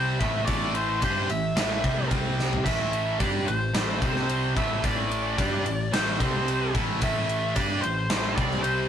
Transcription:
0.00 0.17 C2 loud
0.00 0.19 C3 medium
0.00 0.20 G3 medium
0.00 0.20 C4 loud
0.00 0.19 C5 medium
0.19 0.46 A1 loud
0.19 0.45 A2 loud
0.19 0.46 E3 loud
0.19 0.46 A3 loud
0.19 0.45 E5 medium
0.19 kick loud
0.19 ride medium
0.45 0.99 A1 medium
0.45 1.01 A2 loud
0.45 1.00 E3 medium
0.45 1.01 A3 loud
0.45 0.75 D5 medium
0.45 kick loud
0.45 ride loud
0.75 1.03 C5 medium
0.75 ride medium
1.01 1.28 G2 medium
1.01 1.28 G3 medium
1.01 1.28 D4 medium
1.01 1.29 G4 medium
1.01 1.29 C5 medium
1.01 kick loud
1.01 ride medium
1.28 1.55 A1 medium
1.28 1.51 A2 medium
1.28 1.51 E3 medium
1.28 2.08 E5 medium
1.28 ride medium
1.55 1.82 A1 medium
1.55 1.82 A2 medium
1.55 1.83 E3 loud
1.55 1.83 A3 loud
1.55 snare loud
1.55 ride loud
1.83 2.10 C2 medium
1.83 2.08 C3 medium
1.83 2.09 G3 medium
1.83 2.10 C4 loud
1.83 kick loud
1.83 ride medium
2.10 2.62 C2 medium
2.10 2.64 C3 medium
2.10 2.64 G3 medium
2.10 2.65 C4 loud
2.10 kick loud
2.10 ride medium
2.39 snare medium
2.53 floor tom medium
2.65 3.17 A1 medium
2.65 3.19 A2 medium
2.65 3.19 E3 loud
2.65 3.19 A3 loud
2.65 3.21 E5 loud
2.65 kick loud
2.65 ride medium
2.65 splash medium
2.93 ride medium
3.20 3.46 G2 loud
3.20 3.47 G3 medium
3.20 3.47 D4 medium
3.20 3.47 G4 medium
3.20 3.45 D5 loud
3.20 kick loud
3.20 ride medium
3.48 3.73 A1 medium
3.48 3.70 A2 medium
3.48 3.70 E3 medium
3.48 4.53 C5 medium
3.48 ride medium
3.74 4.00 A1 loud
3.74 4.01 A2 medium
3.74 4.01 E3 loud
3.74 4.02 A3 medium
3.74 snare loud
3.74 ride loud
4.02 4.53 C2 medium
4.02 4.55 C3 medium
4.02 4.56 G3 medium
4.02 4.56 C4 loud
4.02 kick loud
4.02 ride medium
4.16 snare soft
4.29 ride medium
4.56 4.82 A1 medium
4.56 4.81 A2 medium
4.56 4.82 E3 medium
4.56 4.83 A3 loud
4.56 4.85 E5 medium
4.56 kick loud
4.56 ride medium
4.83 5.35 A1 medium
4.83 5.37 A2 medium
4.83 5.37 E3 loud
4.83 5.37 A3 medium
4.83 5.93 D5 medium
4.83 kick loud
4.83 ride medium
5.11 ride medium
5.37 5.64 G2 medium
5.37 5.64 G3 medium
5.37 5.64 D4 medium
5.37 5.65 G4 medium
5.37 kick loud
5.37 ride medium
5.65 5.91 A1 medium
5.65 5.87 A2 medium
5.65 5.87 E3 medium
5.65 ride medium
5.92 6.18 A1 loud
5.92 6.18 A2 medium
5.92 6.19 E3 loud
5.92 6.19 A3 loud
5.92 6.71 C5 medium
5.92 snare loud
5.92 ride loud
6.18 6.71 C2 medium
6.18 6.73 C3 medium
6.18 6.73 G3 loud
6.18 6.73 C4 loud
6.18 kick loud
6.18 ride medium
6.48 ride medium
6.73 7.00 A1 medium
6.73 6.99 A2 loud
6.73 6.99 E3 medium
6.73 7.00 A3 loud
6.73 kick loud
6.73 ride medium
7.00 7.53 A1 medium
7.00 7.54 A2 medium
7.00 7.55 E3 loud
7.00 7.55 A3 loud
7.00 7.53 E5 medium
7.00 kick loud
7.00 ride medium
7.29 ride medium
7.55 7.81 G2 loud
7.55 7.82 G3 medium
7.55 7.83 D4 loud
7.55 7.83 G4 medium
7.55 7.81 D5 loud
7.55 kick loud
7.55 ride loud
7.82 8.09 A1 medium
7.82 8.05 A2 medium
7.82 8.05 E3 medium
7.82 8.33 C5 medium
7.82 ride medium
8.10 8.36 A1 medium
8.10 8.37 A2 medium
8.10 8.37 E3 loud
8.10 8.37 A3 medium
8.10 snare loud
8.10 ride medium
8.36 8.88 C2 loud
8.36 8.88 C3 loud
8.36 8.88 G3 loud
8.36 8.88 C4 loud
8.36 8.63 D5 medium
8.36 kick loud
8.36 ride medium
8.51 snare soft
8.63 8.88 C5 medium
8.63 ride medium

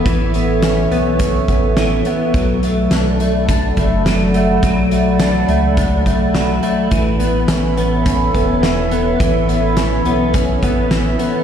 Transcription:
0.00 0.34 B3 medium
0.00 0.62 C#4 medium
0.00 6.87 A4 medium
0.00 2.31 C#5 medium
0.00 2.30 E5 medium
0.06 0.87 A1 medium
0.06 1.76 E3 medium
0.06 2.32 C#6 medium
0.06 kick medium
0.06 closed hi-hat medium
0.34 0.91 B3 soft
0.34 closed hi-hat soft
0.62 1.19 C#4 medium
0.62 snare loud
0.62 closed hi-hat medium
0.91 1.45 B1 medium
0.91 1.48 B3 soft
0.91 closed hi-hat soft
1.19 2.40 C#4 medium
1.19 kick medium
1.19 closed hi-hat medium
1.48 2.03 A1 loud
1.48 2.06 B3 soft
1.48 kick medium
1.48 closed hi-hat soft
1.77 2.35 E3 medium
1.77 snare loud
1.77 closed hi-hat medium
2.05 2.64 B3 medium
2.05 closed hi-hat soft
2.34 2.88 B1 medium
2.34 4.06 F#3 medium
2.34 6.88 D5 medium
2.34 6.88 F#5 medium
2.34 11.44 B5 medium
2.34 kick medium
2.34 closed hi-hat medium
2.63 3.20 A3 soft
2.63 closed hi-hat soft
2.91 3.73 B1 loud
2.91 3.49 D4 medium
2.91 snare loud
2.91 closed hi-hat medium
3.20 3.79 A3 soft
3.20 closed hi-hat soft
3.48 5.19 D4 medium
3.48 kick medium
3.48 closed hi-hat medium
3.77 4.59 F#1 medium
3.77 4.35 A3 soft
3.77 kick medium
3.77 closed hi-hat soft
4.06 4.63 F#3 medium
4.06 snare loud
4.06 closed hi-hat soft
4.34 4.92 A3 medium
4.34 closed hi-hat soft
4.63 5.45 B1 loud
4.63 6.33 F#3 medium
4.63 kick medium
4.63 closed hi-hat medium
4.91 5.48 A3 soft
4.91 closed hi-hat soft
5.19 5.77 D4 medium
5.19 snare loud
5.19 closed hi-hat medium
5.48 6.03 C#2 medium
5.48 6.06 A3 soft
5.48 closed hi-hat soft
5.77 6.98 D4 medium
5.77 kick medium
5.77 closed hi-hat medium
6.06 6.60 B1 medium
6.06 6.63 A3 soft
6.06 kick medium
6.06 closed hi-hat soft
6.35 6.91 F#3 soft
6.35 snare loud
6.35 closed hi-hat soft
6.63 7.19 A3 medium
6.63 closed hi-hat soft
6.91 7.46 A1 loud
6.91 8.62 E3 medium
6.91 11.44 A4 medium
6.91 11.44 C#5 medium
6.91 11.44 E5 medium
6.91 kick loud
6.91 closed hi-hat medium
7.19 7.77 B3 soft
7.19 closed hi-hat soft
7.48 8.30 A1 medium
7.48 8.06 C#4 medium
7.48 snare loud
7.48 closed hi-hat medium
7.77 8.34 B3 medium
7.77 closed hi-hat soft
8.06 9.77 C#4 medium
8.06 kick medium
8.06 closed hi-hat medium
8.34 9.16 E1 medium
8.34 8.91 B3 medium
8.34 kick medium
8.34 closed hi-hat soft
8.62 9.19 E3 soft
8.62 snare loud
8.62 closed hi-hat soft
8.91 9.48 B3 medium
8.91 closed hi-hat medium
9.20 10.02 A1 medium
9.20 10.91 E3 medium
9.20 kick loud
9.20 closed hi-hat medium
9.48 10.05 B3 soft
9.48 closed hi-hat soft
9.77 10.34 C#4 medium
9.77 snare loud
9.77 closed hi-hat medium
10.05 10.64 B1 medium
10.05 10.63 B3 medium
10.05 closed hi-hat soft
10.34 11.44 C#4 medium
10.34 kick medium
10.34 closed hi-hat medium
10.62 11.17 A1 medium
10.62 11.19 B3 soft
10.62 kick medium
10.62 closed hi-hat soft
10.91 11.44 E3 medium
10.91 snare loud
10.91 closed hi-hat soft
11.19 11.44 B3 medium
11.19 closed hi-hat medium

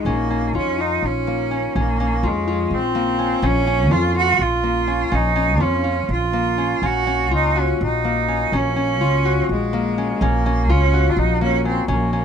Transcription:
0.00 2.26 D#4 medium
0.00 0.61 F#4 medium
0.00 0.61 G#4 medium
0.05 0.55 A#1 medium
0.05 0.55 A#3 medium
0.05 0.30 C#4 medium
0.31 1.51 C#4 medium
0.53 0.96 F2 medium
0.53 0.82 C#4 medium
0.53 0.78 F4 medium
0.79 1.07 D#4 medium
0.79 2.23 F4 medium
1.02 1.66 A#1 medium
1.02 1.77 C#4 medium
1.27 2.94 A#3 medium
1.51 1.75 C#4 medium
1.75 2.25 A#1 medium
1.75 2.28 A#3 medium
1.75 2.00 C#4 medium
2.00 3.18 C#4 medium
2.23 2.65 F2 medium
2.23 2.76 G#3 medium
2.23 2.47 F4 medium
2.48 3.91 F4 medium
2.71 3.33 A#1 medium
2.71 3.46 C4 medium
2.95 4.63 A#3 medium
3.19 3.43 C#4 medium
3.42 3.90 A#1 medium
3.42 3.67 C#4 medium
3.42 3.94 C#4 loud
3.67 4.87 C#4 medium
3.90 4.32 F2 medium
3.90 4.14 F4 medium
3.90 4.16 F4 medium
4.14 5.60 F4 medium
4.14 4.43 F#4 medium
4.39 5.03 A#1 medium
4.39 5.16 F4 medium
4.63 6.33 A#3 medium
4.88 5.11 C#4 medium
5.12 5.60 A#1 medium
5.12 5.35 C#4 medium
5.12 5.64 D#4 medium
5.36 6.57 C#4 medium
5.60 6.03 F2 medium
5.60 6.10 C#4 medium
5.60 5.83 F4 medium
5.84 7.31 F4 medium
6.09 6.73 A#1 medium
6.09 6.87 F4 medium
6.33 8.04 A#3 medium
6.58 6.82 C#4 medium
6.82 7.31 A#1 medium
6.82 7.06 C#4 medium
6.86 7.33 F#4 medium
7.07 8.28 C#4 medium
7.31 7.74 C#2 medium
7.31 7.62 F4 medium
7.35 7.62 D#4 medium
7.56 9.07 F#4 medium
7.60 7.82 C#4 medium
7.81 8.44 A#1 medium
7.81 8.57 D#4 medium
8.04 9.73 A#3 medium
8.28 8.53 C#4 medium
8.52 9.00 A#1 medium
8.52 8.76 C#4 medium
8.52 9.50 C#4 medium
8.76 9.97 C#4 medium
9.00 9.43 C#2 medium
9.00 9.31 F4 medium
9.25 10.75 F#4 medium
9.49 10.12 A#1 medium
9.49 10.24 G#3 medium
9.73 11.41 A#3 medium
9.98 10.21 C#4 medium
10.21 10.69 A#1 loud
10.21 10.72 A#3 medium
10.21 10.45 C#4 medium
10.46 11.65 C#4 medium
10.69 11.11 C#2 medium
10.69 11.13 C#4 medium
10.69 10.99 F4 medium
10.93 12.25 F#4 medium
11.11 11.20 F4 medium
11.17 11.79 A#1 medium
11.17 11.41 D#4 medium
11.41 12.25 A#3 medium
11.41 11.64 C#4 medium
11.65 11.88 C4 medium
11.65 11.88 C#4 medium
11.88 12.25 A#1 medium
11.88 12.25 A#3 medium
11.88 12.12 C#4 medium
12.13 12.25 C#4 medium

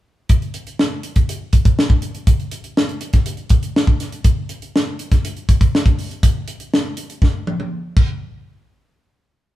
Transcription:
0.29 kick medium
0.29 closed hi-hat medium
0.42 closed hi-hat soft
0.54 closed hi-hat medium
0.67 closed hi-hat soft
0.79 snare loud
1.03 closed hi-hat medium
1.16 kick medium
1.16 closed hi-hat soft
1.29 closed hi-hat medium
1.53 kick medium
1.53 closed hi-hat medium
1.65 kick medium
1.65 closed hi-hat soft
1.79 snare loud
1.90 kick medium
2.02 closed hi-hat medium
2.15 closed hi-hat soft
2.27 kick medium
2.27 closed hi-hat medium
2.40 closed hi-hat soft
2.51 closed hi-hat medium
2.64 closed hi-hat soft
2.77 snare loud
2.89 closed hi-hat soft
3.01 closed hi-hat medium
3.13 kick medium
3.13 snare soft
3.13 closed hi-hat soft
3.26 closed hi-hat medium
3.37 closed hi-hat soft
3.49 kick medium
3.49 closed hi-hat medium
3.63 closed hi-hat medium
3.76 snare loud
3.87 kick medium
4.00 snare soft
4.00 closed hi-hat medium
4.12 closed hi-hat soft
4.24 kick medium
4.24 closed hi-hat medium
4.49 closed hi-hat medium
4.62 closed hi-hat soft
4.76 snare loud
4.99 closed hi-hat medium
5.12 kick medium
5.12 snare soft
5.12 closed hi-hat soft
5.25 closed hi-hat medium
5.37 closed hi-hat soft
5.49 kick medium
5.49 closed hi-hat medium
5.61 kick medium
5.61 closed hi-hat medium
5.75 snare loud
5.86 kick medium
5.86 closed hi-hat soft
5.99 open hi-hat medium
6.11 closed hi-hat soft
6.23 kick medium
6.23 closed hi-hat medium
6.48 closed hi-hat medium
6.60 closed hi-hat soft
6.74 snare loud
6.97 closed hi-hat medium
7.10 closed hi-hat soft
7.22 kick medium
7.22 snare medium
7.47 high tom medium
7.60 high tom medium
7.97 kick loud
7.97 crash medium

